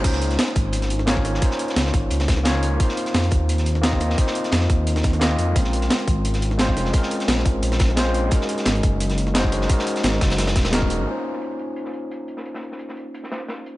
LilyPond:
<<
  \new Staff \with { instrumentName = "Tine electric piano" } { \time 4/4 \key des \major \tempo 4 = 174 <bes des' ees' f' c''>2. <bes des' ees' f' des''>4 | <bes des' ees' f' c''>2. <bes des' ees' f' des''>4 | <bes c' ees' f' c''>2. <bes c' ees' f' ees''>4 | <bes c' ees' f' c''>2. <bes c' ees' f' ees''>4 |
<aes c' des' f' bes'>2. <aes c' des' f' c''>4 | <aes c' des' f' bes'>2. <aes c' des' f' c''>4 | <aes des' ees' ges' bes'>2. <aes des' ees' ges' c''>4 | <aes des' ees' ges' bes'>2. <aes des' ees' ges' bes'>8 r8 |
<bes des' ees' f' c''>1~ | <bes des' ees' f' c''>1 | }
  \new Staff \with { instrumentName = "Detuned saw bass" } { \clef bass \time 4/4 \key des \major des,4 r8 aes,,2 aes,,8 | r4 des,8 aes,,8 des,2 | r4 f,8 ees,2 ees,8 | r4 f,8 ees,4. ees,8 f,8 |
bes,,4 r8 aes,,2 f,,8 | r4 bes,,8 aes,,8 bes,,2 | r4 aes,,8 ges,,2 ges,,8 | r4 aes,,8 ges,,4 ees,,4~ ees,,16 aes,,16 |
r1 | r1 | }
  \new DrumStaff \with { instrumentName = "Drums" } \drummode { \time 4/4 <cymc hh bd>16 sn16 hh16 <hh sn>16 <hh sn>16 hh16 <hh bd>8 hh16 <hh sn>16 hh16 sn16 <hh sn>16 bd16 <hh sn>16 sn16 | <hh bd>16 sn16 hh16 <hh sn>16 <hh sn>16 sn16 <hh bd>8 hh16 <hh sn>16 <hh bd sn>16 sn16 <hh sn>8 hh8 | <hh bd>16 sn16 hh16 <hh sn>16 <hh sn>16 hh16 <hh bd>8 hh16 <hh sn>16 hh16 sn16 <hh sn>16 bd16 <hh sn>16 sn16 | <hh bd>16 sn16 hh16 <hh sn>16 <hh sn>16 sn16 <hh bd>8 hh16 <hh sn>16 <hh bd sn>16 <hh sn>16 <hh sn>8 hh8 |
<hh bd>16 sn16 hh16 <hh sn>16 <hh sn>16 hh16 <hh bd>8 hh16 <hh sn>16 hh16 sn16 <hh sn>16 bd16 <hh sn>16 sn16 | <hh bd>16 sn16 hh16 <hh sn>16 <hh sn>16 sn16 <hh bd>8 hh16 <hh sn>16 <hh bd sn>16 sn16 <hh sn>8 hh8 | <hh bd>16 sn16 hh16 <hh sn>16 <hh sn>16 hh16 <hh bd>8 hh16 <hh sn>16 hh16 sn16 <hh sn>16 bd16 <hh sn>16 sn16 | <hh bd>16 sn16 hh16 <hh sn>16 <hh sn>16 sn16 <hh bd sn>16 <hh sn>16 <hh sn>16 <hh sn>16 <hh bd sn>16 <hh sn>16 <hh sn>16 bd16 hh8 |
hh16 sn16 hh16 sn16 hh16 hh16 hh8 hh16 sn16 hh8 hh8 hh16 sn16 | hh16 sn16 hh16 sn16 hh16 sn16 hh8 hh16 sn16 <hh sn>8 <hh sn>8 hh8 | }
>>